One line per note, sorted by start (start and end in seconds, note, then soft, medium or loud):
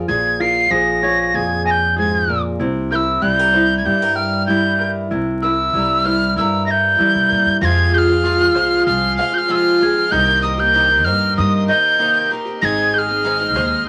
0.00 0.69 F3 medium
0.00 0.39 A#4 medium
0.00 0.39 G#5 medium
0.08 0.68 A#1 medium
0.08 1.33 A#2 medium
0.08 0.70 G#4 medium
0.08 0.42 G#6 medium
0.40 1.03 F4 medium
0.40 1.66 A#4 medium
0.40 0.72 C7 medium
0.70 1.30 A#1 medium
0.70 2.59 F3 medium
0.70 1.34 G#4 medium
0.70 1.33 G#4 medium
0.70 1.37 A#6 medium
1.03 2.57 F4 soft
1.03 2.28 C#5 medium
1.34 2.56 F2 medium
1.34 1.97 A#2 soft
1.34 2.56 G#4 medium
1.34 1.95 G#4 medium
1.34 1.66 G#6 medium
1.66 2.60 G#5 medium
1.66 1.72 A#6 medium
1.71 1.95 G6 medium
1.96 2.29 G#2 medium
1.96 2.59 G#4 medium
1.96 2.42 G#6 medium
2.28 2.60 A#2 medium
2.28 2.59 A#4 medium
2.59 3.19 C2 medium
2.59 3.86 C3 medium
2.59 3.21 E4 medium
2.91 3.55 E4 medium
2.91 4.16 A#4 medium
2.91 2.96 G6 medium
2.95 3.24 E6 medium
3.22 3.82 C2 medium
3.22 4.48 G3 medium
3.22 3.84 E4 medium
3.22 3.39 G4 medium
3.22 3.77 G6 loud
3.39 3.86 A#4 medium
3.53 4.49 E4 medium
3.53 4.79 C5 medium
3.78 3.87 G#6 medium
3.85 5.07 G2 medium
3.85 5.11 G2 soft
3.85 4.46 E4 medium
3.85 4.02 G4 medium
3.85 4.17 G6 loud
4.02 5.11 A#4 soft
4.15 5.42 G5 medium
4.15 4.46 F6 medium
4.46 5.08 G3 medium
4.46 5.09 E4 medium
4.46 5.08 E4 medium
4.46 4.91 G6 medium
4.78 5.41 A#4 medium
5.11 5.70 C2 medium
5.11 6.37 C3 medium
5.11 5.72 E4 medium
5.42 6.06 E4 soft
5.42 6.68 A#4 medium
5.42 6.07 E6 medium
5.73 6.33 C2 medium
5.73 6.99 G3 medium
5.73 6.35 E4 medium
5.73 6.38 A#4 medium
6.05 6.99 E4 soft
6.05 7.29 C5 medium
6.05 6.37 F6 medium
6.36 6.96 G2 medium
6.36 7.63 G2 soft
6.36 6.97 E4 medium
6.36 7.59 A#4 medium
6.36 6.66 E6 medium
6.66 7.62 E5 medium
6.66 6.72 A#6 medium
6.71 7.57 G6 medium
6.99 7.13 E3 medium
6.99 7.58 G3 medium
6.99 7.61 E4 medium
6.99 7.59 E4 medium
7.15 7.29 C3 medium
7.29 7.45 A#2 medium
7.29 7.61 A#4 medium
7.46 7.60 G2 medium
7.61 8.08 F2 medium
7.61 8.56 F2 loud
7.61 8.09 C3 medium
7.61 8.09 F3 medium
7.61 8.09 G#3 medium
7.61 8.08 C4 medium
7.61 8.22 F4 medium
7.61 8.07 F4 medium
7.61 10.10 G#4 medium
7.61 10.10 F5 medium
7.61 13.89 C6 medium
7.61 7.96 G#6 loud
7.61 7.66 A#6 loud
7.93 9.18 G#4 medium
7.93 7.99 G6 medium
7.98 8.86 F6 loud
8.08 8.24 F3 soft
8.08 8.24 G#3 soft
8.08 8.25 C4 soft
8.08 8.24 F4 soft
8.24 8.40 F2 medium
8.24 8.40 C3 medium
8.24 8.40 F3 medium
8.24 8.41 G#3 medium
8.24 8.39 C4 medium
8.24 8.86 F4 medium
8.24 8.38 F4 medium
8.39 8.54 F3 soft
8.39 8.55 G#3 soft
8.39 8.56 C4 soft
8.39 8.55 F4 soft
8.55 8.85 C2 medium
8.55 8.85 F3 medium
8.55 8.87 G#3 medium
8.55 8.87 C4 medium
8.55 8.88 F4 medium
8.55 9.80 C5 medium
8.86 9.16 C2 medium
8.86 9.16 F3 soft
8.86 9.17 G#3 soft
8.86 9.18 C4 medium
8.86 9.49 F4 medium
8.86 9.19 F4 medium
8.86 9.16 F6 loud
9.17 9.33 F3 medium
9.17 9.34 G#3 medium
9.17 9.32 C4 medium
9.17 9.31 F4 medium
9.17 10.12 F5 medium
9.17 9.35 F6 loud
9.32 9.48 F3 soft
9.32 9.48 G#3 soft
9.32 9.49 C4 soft
9.32 9.49 F4 soft
9.32 9.39 G6 medium
9.38 9.52 F6 loud
9.48 9.80 F2 medium
9.48 9.80 C3 medium
9.48 9.78 F3 medium
9.48 9.80 G#3 medium
9.48 9.81 C4 medium
9.48 10.12 F4 medium
9.48 9.81 F4 medium
9.48 9.56 E6 medium
9.55 10.13 F6 loud
9.79 9.96 F3 medium
9.79 9.96 G#3 medium
9.79 9.96 C4 medium
9.79 9.94 F4 medium
9.79 10.13 G#4 medium
9.96 10.12 F3 soft
9.96 10.12 G#3 soft
9.96 10.12 C4 soft
9.96 10.12 F4 soft
10.10 11.06 C2 loud
10.10 10.59 C3 medium
10.10 10.59 D#3 medium
10.10 10.59 A#3 medium
10.10 10.58 C4 medium
10.10 10.74 D#4 medium
10.10 10.57 G4 medium
10.10 12.59 A#4 medium
10.10 13.89 D#5 medium
10.10 10.42 G6 loud
10.43 11.69 A#4 medium
10.43 10.61 D#6 medium
10.58 10.73 A#3 soft
10.58 10.74 C4 soft
10.58 10.74 G4 medium
10.58 11.06 G6 medium
10.73 10.90 C3 medium
10.73 10.90 D#3 medium
10.73 10.90 A#3 medium
10.73 10.89 C4 medium
10.73 11.36 D#4 medium
10.73 10.88 G4 medium
10.89 11.05 A#3 soft
10.89 11.05 C4 soft
10.89 11.05 G4 soft
11.05 11.35 G2 medium
11.05 11.35 D#3 medium
11.05 11.36 A#3 medium
11.05 11.37 C4 medium
11.05 11.38 G4 medium
11.05 12.31 C5 medium
11.05 11.36 F6 loud
11.36 11.67 G2 loud
11.36 11.67 D#3 soft
11.36 11.68 A#3 soft
11.36 11.68 C4 medium
11.36 11.98 D#4 medium
11.36 11.69 G4 medium
11.36 11.66 D#6 medium
11.68 11.98 D#3 medium
11.68 11.99 A#3 medium
11.68 11.99 C4 medium
11.68 12.00 G4 medium
11.68 12.62 D#5 medium
11.68 12.31 G6 loud
11.99 12.30 C3 medium
11.99 12.29 D#3 medium
11.99 12.30 A#3 medium
11.99 12.31 C4 medium
11.99 12.61 D#4 medium
11.99 12.32 G4 medium
12.30 12.46 D#3 medium
12.30 12.46 A#3 medium
12.30 12.46 C4 medium
12.30 12.44 G4 medium
12.30 12.62 A#4 medium
12.45 12.63 A#3 soft
12.45 12.62 C4 soft
12.45 12.61 G4 soft
12.61 13.56 G#1 loud
12.61 13.08 G#2 medium
12.61 13.09 D#3 medium
12.61 13.09 G#3 medium
12.61 13.09 C4 medium
12.61 13.23 D#4 medium
12.61 13.08 D#4 medium
12.61 13.89 G#4 medium
12.61 13.07 G#4 medium
12.61 12.95 G#6 loud
12.61 12.66 A#6 medium
12.93 13.89 G#4 medium
12.93 12.99 G6 medium
12.98 13.87 F6 medium
13.09 13.24 G#3 soft
13.09 13.24 C4 soft
13.09 13.25 D#4 soft
13.09 13.24 G#4 medium
13.24 13.40 G#2 medium
13.24 13.40 D#3 medium
13.24 13.40 G#3 medium
13.24 13.41 C4 medium
13.24 13.86 D#4 medium
13.24 13.40 D#4 medium
13.24 13.39 G#4 medium
13.40 13.53 G#3 soft
13.40 13.55 C4 soft
13.40 13.56 D#4 soft
13.40 13.56 G#4 soft
13.55 13.85 D#2 medium
13.55 13.85 G#3 medium
13.55 13.87 C4 medium
13.55 13.88 D#4 medium
13.55 13.88 G#4 medium
13.55 13.89 C5 medium